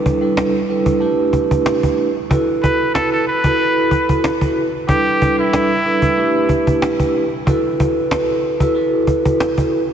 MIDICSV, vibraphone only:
0, 0, Header, 1, 2, 480
1, 0, Start_track
1, 0, Tempo, 645161
1, 1715, Time_signature, 4, 2, 24, 8
1, 7389, End_track
2, 0, Start_track
2, 0, Title_t, "Vibraphone"
2, 0, Program_c, 0, 11
2, 0, Note_on_c, 0, 55, 85
2, 0, Note_on_c, 0, 62, 82
2, 0, Note_on_c, 0, 64, 78
2, 0, Note_on_c, 0, 69, 85
2, 0, Note_on_c, 0, 71, 99
2, 131, Note_off_c, 0, 55, 0
2, 133, Note_off_c, 0, 62, 0
2, 135, Note_off_c, 0, 64, 0
2, 136, Note_off_c, 0, 69, 0
2, 138, Note_off_c, 0, 71, 0
2, 155, Note_on_c, 0, 55, 96
2, 159, Note_on_c, 0, 62, 86
2, 161, Note_on_c, 0, 64, 86
2, 165, Note_on_c, 0, 69, 84
2, 168, Note_on_c, 0, 71, 100
2, 381, Note_off_c, 0, 55, 0
2, 382, Note_off_c, 0, 62, 0
2, 384, Note_off_c, 0, 64, 0
2, 385, Note_off_c, 0, 69, 0
2, 387, Note_off_c, 0, 71, 0
2, 510, Note_on_c, 0, 55, 90
2, 513, Note_on_c, 0, 62, 82
2, 517, Note_on_c, 0, 64, 86
2, 519, Note_on_c, 0, 69, 78
2, 523, Note_on_c, 0, 71, 109
2, 741, Note_off_c, 0, 62, 0
2, 744, Note_off_c, 0, 64, 0
2, 747, Note_on_c, 0, 57, 97
2, 750, Note_off_c, 0, 71, 0
2, 750, Note_on_c, 0, 62, 88
2, 752, Note_off_c, 0, 55, 0
2, 753, Note_on_c, 0, 64, 84
2, 756, Note_on_c, 0, 67, 81
2, 757, Note_off_c, 0, 69, 0
2, 759, Note_on_c, 0, 71, 101
2, 1530, Note_off_c, 0, 57, 0
2, 1532, Note_off_c, 0, 62, 0
2, 1533, Note_off_c, 0, 64, 0
2, 1534, Note_off_c, 0, 67, 0
2, 1536, Note_off_c, 0, 71, 0
2, 1708, Note_on_c, 0, 64, 92
2, 1712, Note_on_c, 0, 66, 80
2, 1716, Note_on_c, 0, 69, 83
2, 1720, Note_on_c, 0, 71, 98
2, 2490, Note_off_c, 0, 64, 0
2, 2492, Note_off_c, 0, 66, 0
2, 2494, Note_off_c, 0, 69, 0
2, 2497, Note_off_c, 0, 71, 0
2, 2567, Note_on_c, 0, 64, 88
2, 2570, Note_on_c, 0, 66, 83
2, 2574, Note_on_c, 0, 69, 83
2, 2579, Note_on_c, 0, 71, 100
2, 2658, Note_off_c, 0, 64, 0
2, 2662, Note_off_c, 0, 66, 0
2, 2666, Note_off_c, 0, 69, 0
2, 2667, Note_on_c, 0, 64, 92
2, 2670, Note_off_c, 0, 71, 0
2, 2671, Note_on_c, 0, 66, 81
2, 2675, Note_on_c, 0, 69, 86
2, 2679, Note_on_c, 0, 71, 104
2, 3450, Note_off_c, 0, 64, 0
2, 3452, Note_off_c, 0, 66, 0
2, 3454, Note_off_c, 0, 69, 0
2, 3456, Note_off_c, 0, 71, 0
2, 3624, Note_on_c, 0, 55, 85
2, 3627, Note_on_c, 0, 62, 80
2, 3631, Note_on_c, 0, 64, 80
2, 3634, Note_on_c, 0, 69, 86
2, 3636, Note_on_c, 0, 71, 100
2, 3971, Note_off_c, 0, 55, 0
2, 3973, Note_off_c, 0, 62, 0
2, 3975, Note_off_c, 0, 64, 0
2, 3976, Note_off_c, 0, 69, 0
2, 3978, Note_off_c, 0, 71, 0
2, 3994, Note_on_c, 0, 55, 102
2, 3998, Note_on_c, 0, 62, 86
2, 4001, Note_on_c, 0, 64, 82
2, 4004, Note_on_c, 0, 69, 84
2, 4007, Note_on_c, 0, 71, 102
2, 4220, Note_off_c, 0, 55, 0
2, 4222, Note_off_c, 0, 62, 0
2, 4224, Note_off_c, 0, 64, 0
2, 4225, Note_off_c, 0, 69, 0
2, 4226, Note_off_c, 0, 71, 0
2, 4350, Note_on_c, 0, 55, 89
2, 4352, Note_on_c, 0, 62, 81
2, 4356, Note_on_c, 0, 64, 86
2, 4359, Note_on_c, 0, 69, 79
2, 4362, Note_on_c, 0, 71, 107
2, 4581, Note_off_c, 0, 62, 0
2, 4584, Note_off_c, 0, 64, 0
2, 4587, Note_on_c, 0, 57, 96
2, 4590, Note_off_c, 0, 71, 0
2, 4590, Note_on_c, 0, 62, 89
2, 4592, Note_off_c, 0, 55, 0
2, 4593, Note_on_c, 0, 64, 84
2, 4596, Note_on_c, 0, 67, 80
2, 4597, Note_off_c, 0, 69, 0
2, 4599, Note_on_c, 0, 71, 103
2, 5370, Note_off_c, 0, 57, 0
2, 5371, Note_off_c, 0, 62, 0
2, 5373, Note_off_c, 0, 64, 0
2, 5374, Note_off_c, 0, 67, 0
2, 5376, Note_off_c, 0, 71, 0
2, 5549, Note_on_c, 0, 64, 96
2, 5554, Note_on_c, 0, 66, 86
2, 5557, Note_on_c, 0, 69, 88
2, 5562, Note_on_c, 0, 71, 98
2, 6331, Note_off_c, 0, 64, 0
2, 6333, Note_off_c, 0, 66, 0
2, 6335, Note_off_c, 0, 69, 0
2, 6337, Note_off_c, 0, 71, 0
2, 6409, Note_on_c, 0, 64, 94
2, 6412, Note_on_c, 0, 66, 86
2, 6417, Note_on_c, 0, 69, 83
2, 6420, Note_on_c, 0, 71, 107
2, 6499, Note_off_c, 0, 64, 0
2, 6503, Note_off_c, 0, 66, 0
2, 6507, Note_off_c, 0, 69, 0
2, 6508, Note_on_c, 0, 64, 94
2, 6511, Note_off_c, 0, 71, 0
2, 6512, Note_on_c, 0, 66, 83
2, 6516, Note_on_c, 0, 69, 87
2, 6520, Note_on_c, 0, 71, 105
2, 7290, Note_off_c, 0, 64, 0
2, 7293, Note_off_c, 0, 66, 0
2, 7295, Note_off_c, 0, 69, 0
2, 7296, Note_off_c, 0, 71, 0
2, 7389, End_track
0, 0, End_of_file